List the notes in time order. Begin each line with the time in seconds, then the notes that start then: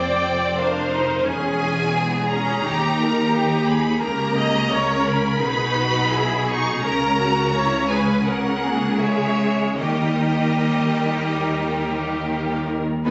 Already playing: F1 F2 C4 C5 D5 G5
0.57 D4 A#4 C5 F5
0.91 D#4
1.25 E1 E2 C#4 G#4 G#5
1.95 B3 G#4
2.30 C#4 A#5
2.64 D#2 D#4 G4
2.99 A#4
3.32 D#4 G4
3.67 G#4 B5
4.01 C#2 C#3 A#3 G4 A#4 A#5
4.36 D#5
4.70 C#4 A#4 C#5
5.07 A#4 B5
5.40 B1 B2 D#4 G#4 B4
5.76 F#4
6.11 E4 G#4
6.47 D#4 C#6
6.81 C#2 C#3 C#4 A#4 A#5
7.18 F#4
7.52 E4 C#5
7.88 G#4 B4 G#5
8.24 C#4 A#4 F#5
8.60 A#3 G#4
8.98 G#3 C#5 E5
9.79 D#2 D#3 G3 G4 A#4 D#5
13.06 G#1 G#3 B3 D#4 B4 G#5